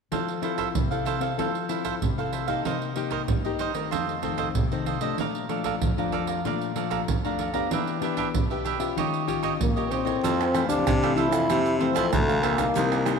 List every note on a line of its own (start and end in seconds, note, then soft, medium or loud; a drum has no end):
0.11 0.72 F3 medium
0.11 0.30 C4 soft
0.11 0.30 E4 soft
0.11 0.42 A4 medium
0.11 0.31 A4 medium
0.11 0.42 C5 medium
0.11 0.43 F5 medium
0.11 pandeiro medium
0.11 surdo medium
0.28 pandeiro soft
0.42 0.85 C4 soft
0.42 0.56 E4 soft
0.42 0.85 E4 soft
0.42 0.57 A4 soft
0.42 0.85 A4 medium
0.42 0.57 C5 soft
0.42 0.57 F5 soft
0.42 pandeiro medium
0.58 0.67 E4 medium
0.58 0.68 A4 medium
0.58 0.68 C5 medium
0.58 0.68 F5 medium
0.58 pandeiro medium
0.58 surdo soft
0.74 1.35 C3 medium
0.74 pandeiro medium
0.74 surdo medium
0.91 1.18 C4 medium
0.91 1.18 E4 medium
0.91 1.18 A4 medium
0.91 1.05 A4 soft
0.91 1.06 C5 soft
0.91 1.05 F5 soft
0.91 pandeiro soft
0.91 surdo soft
1.05 1.21 E4 medium
1.05 1.21 A4 medium
1.05 1.21 C5 medium
1.05 1.20 F5 medium
1.05 pandeiro medium
1.21 1.32 C4 medium
1.21 1.33 E4 medium
1.21 1.33 A4 medium
1.21 1.37 A4 soft
1.21 1.37 C5 soft
1.21 1.36 F5 soft
1.21 pandeiro medium
1.38 1.98 F3 medium
1.38 1.57 C4 soft
1.38 1.57 E4 medium
1.38 1.57 A4 medium
1.38 1.68 A4 medium
1.38 1.69 C5 medium
1.38 1.70 F5 medium
1.38 pandeiro medium
1.38 surdo soft
1.55 pandeiro soft
1.69 1.99 C4 soft
1.69 1.83 E4 soft
1.69 1.99 E4 soft
1.69 1.83 A4 soft
1.69 2.00 A4 medium
1.69 1.84 C5 soft
1.69 1.84 F5 soft
1.69 pandeiro medium
1.84 1.94 E4 medium
1.84 1.94 A4 medium
1.84 1.94 C5 medium
1.84 1.94 F5 medium
1.84 pandeiro medium
1.84 surdo soft
2.01 2.62 C3 medium
2.01 pandeiro medium
2.01 surdo medium
2.18 2.44 C4 medium
2.18 2.44 E4 medium
2.18 2.44 A4 medium
2.18 2.32 A4 soft
2.18 2.32 C5 soft
2.18 2.32 F5 soft
2.18 pandeiro soft
2.32 2.47 E4 soft
2.32 2.48 A4 soft
2.32 2.47 C5 soft
2.32 2.46 F5 soft
2.32 pandeiro medium
2.47 2.91 A#3 medium
2.47 2.91 D#4 medium
2.47 2.91 G4 medium
2.47 2.64 A4 soft
2.47 2.63 C5 medium
2.47 2.63 F5 medium
2.47 pandeiro medium
2.47 surdo soft
2.65 3.26 C3 medium
2.65 2.95 D#4 medium
2.65 2.95 A#4 medium
2.65 2.96 C5 medium
2.65 2.96 D#5 medium
2.65 pandeiro medium
2.65 surdo medium
2.82 pandeiro soft
2.96 3.39 A#3 soft
2.96 3.10 D#4 soft
2.96 3.39 D#4 medium
2.96 3.39 G4 medium
2.96 3.10 A#4 soft
2.96 3.10 C5 soft
2.96 3.11 D#5 soft
2.96 pandeiro medium
3.11 3.21 D#4 medium
3.11 3.21 A#4 medium
3.11 3.21 C5 medium
3.11 3.21 D#5 medium
3.11 pandeiro medium
3.11 surdo soft
3.28 3.88 G2 medium
3.28 pandeiro medium
3.28 surdo medium
3.44 3.71 A#3 medium
3.44 3.71 D#4 medium
3.44 3.71 G4 medium
3.44 3.58 A#4 soft
3.44 3.59 C5 soft
3.44 3.59 D#5 soft
3.44 pandeiro soft
3.44 surdo soft
3.59 3.74 D#4 medium
3.59 3.74 A#4 medium
3.59 3.74 C5 medium
3.59 3.73 D#5 medium
3.59 pandeiro medium
3.74 4.18 D#3 medium
3.74 4.18 A3 medium
3.74 4.18 C4 medium
3.74 3.90 A#4 soft
3.74 3.90 C5 soft
3.74 3.89 D#5 soft
3.74 pandeiro medium
3.91 4.52 F2 medium
3.91 4.21 F4 medium
3.91 4.22 A4 medium
3.91 4.22 C5 medium
3.91 4.23 D#5 medium
3.91 pandeiro medium
3.91 surdo soft
4.09 pandeiro soft
4.22 4.53 D#3 medium
4.22 4.53 A3 soft
4.22 4.53 C4 medium
4.22 4.36 F4 soft
4.22 4.37 A4 soft
4.22 4.37 C5 soft
4.22 4.37 D#5 soft
4.22 pandeiro medium
4.22 surdo soft
4.38 4.47 F4 medium
4.38 4.48 A4 medium
4.38 4.48 C5 medium
4.38 4.48 D#5 medium
4.38 pandeiro medium
4.38 surdo soft
4.55 5.15 C3 medium
4.55 pandeiro medium
4.55 surdo medium
4.72 4.98 D#3 medium
4.72 4.98 A3 medium
4.72 4.98 C4 medium
4.72 4.86 A4 soft
4.72 4.86 C5 soft
4.72 4.86 D#5 soft
4.72 pandeiro soft
4.86 5.01 F4 soft
4.86 5.01 A4 soft
4.86 5.01 C5 soft
4.86 5.00 D#5 medium
4.86 pandeiro medium
5.01 5.44 F3 medium
5.01 5.44 A3 medium
5.01 5.45 D4 medium
5.01 5.17 A4 medium
5.01 5.17 C5 medium
5.01 5.16 D#5 medium
5.01 pandeiro medium
5.01 surdo soft
5.18 5.78 A#2 medium
5.18 5.49 D5 medium
5.18 5.50 F5 medium
5.18 5.50 A#5 medium
5.18 pandeiro medium
5.18 surdo medium
5.35 pandeiro soft
5.49 5.92 F3 medium
5.49 5.92 A3 medium
5.49 5.92 D4 medium
5.49 5.63 A4 soft
5.49 5.64 D5 soft
5.49 5.64 F5 soft
5.49 5.64 A#5 soft
5.49 pandeiro medium
5.64 5.74 A4 medium
5.64 5.74 D5 medium
5.64 5.74 F5 medium
5.64 5.74 A#5 medium
5.64 pandeiro medium
5.64 surdo soft
5.82 6.42 F2 medium
5.82 pandeiro medium
5.82 surdo medium
5.98 6.40 F3 medium
5.98 6.40 A3 medium
5.98 6.40 D4 medium
5.98 6.12 D5 soft
5.98 6.12 F5 soft
5.98 6.12 A#5 soft
5.98 pandeiro soft
5.98 surdo soft
6.12 6.27 A4 medium
6.12 6.27 D5 medium
6.12 6.27 F5 medium
6.12 6.26 A#5 medium
6.12 pandeiro medium
6.27 6.43 D5 soft
6.27 6.43 F5 soft
6.27 6.43 A#5 soft
6.27 pandeiro medium
6.44 7.05 A#2 medium
6.44 6.71 F3 medium
6.44 6.71 A3 medium
6.44 6.71 D4 medium
6.44 6.75 D5 medium
6.44 6.76 F5 medium
6.44 6.76 A#5 medium
6.44 pandeiro medium
6.44 surdo medium
6.61 pandeiro soft
6.75 7.05 F3 medium
6.75 7.06 A3 soft
6.75 7.06 D4 medium
6.75 6.89 A4 soft
6.75 6.90 D5 soft
6.75 6.90 F5 soft
6.75 6.90 A#5 soft
6.75 pandeiro medium
6.90 7.00 A4 medium
6.90 7.00 D5 medium
6.90 7.01 F5 medium
6.90 7.01 A#5 medium
6.90 pandeiro medium
6.90 surdo soft
7.08 7.68 F2 medium
7.08 pandeiro medium
7.08 surdo medium
7.24 7.51 F3 medium
7.24 7.51 A3 medium
7.24 7.51 D4 medium
7.24 7.38 D5 soft
7.24 7.39 F5 soft
7.24 7.38 A#5 soft
7.24 pandeiro soft
7.39 7.54 A4 soft
7.39 7.54 D5 soft
7.39 7.53 F5 soft
7.39 7.52 A#5 soft
7.39 pandeiro medium
7.54 7.97 B3 medium
7.54 7.97 D4 medium
7.54 7.97 G4 medium
7.54 7.70 D5 medium
7.54 7.69 F5 medium
7.54 7.69 A#5 medium
7.54 pandeiro medium
7.54 surdo soft
7.71 8.31 E3 medium
7.71 8.01 D4 medium
7.71 8.01 G4 medium
7.71 8.02 B4 medium
7.71 8.02 E5 medium
7.71 pandeiro medium
7.71 surdo medium
7.87 pandeiro soft
8.01 8.44 B3 medium
8.01 8.16 D4 soft
8.01 8.44 D4 medium
8.01 8.45 G4 medium
8.01 8.16 G4 soft
8.01 8.17 B4 soft
8.01 8.17 E5 soft
8.01 pandeiro medium
8.17 8.27 D4 medium
8.17 8.27 G4 medium
8.17 8.27 B4 medium
8.17 8.27 E5 medium
8.17 pandeiro medium
8.17 surdo soft
8.34 8.94 B2 medium
8.34 pandeiro medium
8.34 surdo medium
8.50 8.77 B3 medium
8.50 8.77 D4 medium
8.50 8.77 G4 medium
8.50 8.64 G4 soft
8.50 8.65 B4 soft
8.50 8.65 E5 soft
8.50 pandeiro soft
8.50 surdo soft
8.65 8.80 D4 medium
8.65 8.80 G4 medium
8.65 8.79 B4 medium
8.65 8.78 E5 medium
8.65 pandeiro medium
8.79 9.23 C#4 medium
8.79 9.23 F4 medium
8.79 9.23 G4 medium
8.79 8.96 G4 soft
8.79 8.95 B4 soft
8.79 8.95 E5 soft
8.79 pandeiro medium
8.96 9.57 D#3 medium
8.96 9.26 D#4 medium
8.96 9.27 G4 medium
8.96 9.28 C#5 medium
8.96 9.28 D#5 medium
8.96 pandeiro medium
8.96 surdo soft
9.14 pandeiro soft
9.27 9.70 C#4 medium
9.27 9.41 D#4 soft
9.27 9.70 F4 medium
9.27 9.71 G4 medium
9.27 9.42 G4 soft
9.27 9.42 C#5 soft
9.27 9.43 D#5 medium
9.27 pandeiro medium
9.27 surdo soft
9.43 9.53 D#4 medium
9.43 9.53 G4 medium
9.43 9.53 C#5 medium
9.43 9.53 D#5 medium
9.43 pandeiro medium
9.43 surdo soft
9.60 10.20 A#2 medium
9.60 9.93 A#3 medium
9.60 pandeiro medium
9.60 surdo medium
9.76 10.03 C#4 medium
9.76 10.03 F4 medium
9.76 10.03 G4 medium
9.76 9.90 G4 soft
9.76 9.91 C#5 soft
9.76 9.91 D#5 soft
9.76 pandeiro soft
9.91 10.68 C4 medium
9.91 10.06 D#4 soft
9.91 10.05 G4 soft
9.91 10.05 C#5 soft
9.91 10.04 D#5 medium
9.91 pandeiro medium
10.05 10.49 C4 medium
10.05 10.49 E4 medium
10.05 10.22 G4 medium
10.05 10.49 A4 medium
10.05 10.21 C#5 medium
10.05 10.21 D#5 medium
10.05 pandeiro medium
10.05 surdo soft
10.23 10.70 F2 medium
10.23 10.83 F2 medium
10.23 10.53 A4 medium
10.23 10.54 C5 medium
10.23 10.54 F5 medium
10.23 pandeiro medium
10.23 shaker medium
10.23 surdo medium
10.41 pandeiro soft
10.41 tamborim medium
10.41 shaker soft
10.54 10.97 E3 medium
10.54 10.97 A3 medium
10.54 10.97 C4 medium
10.54 10.69 E4 soft
10.54 10.69 A4 soft
10.54 10.68 C5 soft
10.54 10.68 F5 soft
10.54 pandeiro medium
10.54 tamborim medium
10.54 shaker medium
10.69 10.83 C3 medium
10.69 11.18 D4 medium
10.69 11.01 A4 soft
10.69 11.00 C5 soft
10.69 11.00 F5 soft
10.69 pandeiro medium
10.69 shaker medium
10.69 surdo soft
10.87 11.34 C3 loud
10.87 11.47 C3 medium
10.87 pandeiro medium
10.87 tamborim medium
10.87 shaker medium
10.87 surdo medium
11.03 11.61 E3 medium
11.03 11.61 A3 medium
11.03 11.61 C4 medium
11.03 11.11 E4 medium
11.03 11.11 A4 medium
11.03 11.12 C5 medium
11.03 11.12 F5 medium
11.03 pandeiro soft
11.03 tamborim medium
11.03 shaker soft
11.03 surdo soft
11.16 11.31 E4 medium
11.16 11.81 E4 medium
11.16 11.31 A4 medium
11.16 11.31 C5 medium
11.16 11.30 F5 medium
11.16 pandeiro medium
11.31 11.46 F2 medium
11.31 11.48 A4 soft
11.31 11.47 C5 soft
11.31 11.47 F5 soft
11.31 pandeiro medium
11.31 tamborim medium
11.31 shaker medium
11.49 12.09 F2 medium
11.49 11.90 C3 loud
11.49 11.79 A4 medium
11.49 11.79 C5 medium
11.49 pandeiro medium
11.49 tamborim medium
11.49 shaker medium
11.49 surdo medium
11.66 pandeiro soft
11.66 shaker soft
11.79 12.23 E3 medium
11.79 12.23 A3 medium
11.79 12.13 C4 medium
11.79 12.23 C4 medium
11.79 11.93 E4 soft
11.79 11.94 A4 medium
11.79 11.94 C5 soft
11.79 11.95 F5 medium
11.79 pandeiro medium
11.95 12.09 F2 medium
11.95 12.05 E4 medium
11.95 12.05 A4 medium
11.95 12.05 C5 medium
11.95 12.05 F5 medium
11.95 pandeiro medium
11.95 tamborim medium
11.95 shaker medium
11.95 surdo soft
12.12 12.66 D2 medium
12.12 12.72 C3 medium
12.12 12.41 A3 medium
12.12 pandeiro medium
12.12 tamborim medium
12.12 shaker medium
12.12 surdo medium
12.28 12.55 E3 medium
12.28 12.55 A3 medium
12.28 12.55 C4 medium
12.28 12.42 A4 soft
12.28 12.43 C5 soft
12.28 12.43 F5 soft
12.28 pandeiro soft
12.28 shaker soft
12.42 13.18 A#3 medium
12.42 12.58 E4 medium
12.42 12.58 A4 medium
12.42 12.58 C5 medium
12.42 12.57 F5 medium
12.42 pandeiro medium
12.42 tamborim medium
12.58 13.01 G3 medium
12.58 13.01 A#3 medium
12.58 13.02 D#4 medium
12.58 12.74 A4 soft
12.58 12.74 C5 soft
12.58 12.73 F5 soft
12.58 pandeiro medium
12.58 tamborim medium
12.58 shaker medium
12.58 surdo soft
12.75 13.19 C2 medium
12.75 13.19 C3 soft
12.75 13.04 D#4 medium
12.75 13.05 A#4 medium
12.75 13.06 C5 medium
12.75 13.06 D#5 medium
12.75 pandeiro medium
12.75 shaker medium
12.75 surdo medium
12.92 pandeiro soft
12.92 tamborim medium
12.92 shaker soft
13.05 13.19 G3 medium
13.05 13.19 A#3 medium
13.05 13.19 D#4 soft
13.05 13.19 D#4 medium
13.05 13.19 A#4 soft
13.05 13.19 C5 medium
13.05 13.19 D#5 soft
13.05 pandeiro medium
13.05 tamborim medium
13.05 shaker medium